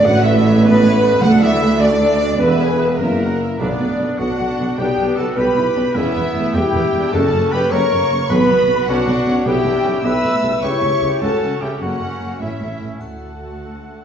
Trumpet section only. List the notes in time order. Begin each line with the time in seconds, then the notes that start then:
0.05 F#5
0.25 E5
0.64 B4
1.22 F#5
1.41 E5
1.80 D5
2.39 B4
2.99 A#4
3.59 B3
4.19 D4
4.78 D4
5.17 F#4
5.37 G4
5.95 B3
6.55 E4
7.13 F#4
7.52 G4
7.72 A#4
8.30 F#4
8.88 D4
9.46 E4
10.05 B4
10.63 G4
11.22 F#4
11.61 E4
11.81 C#4
12.41 C#4
13.01 A4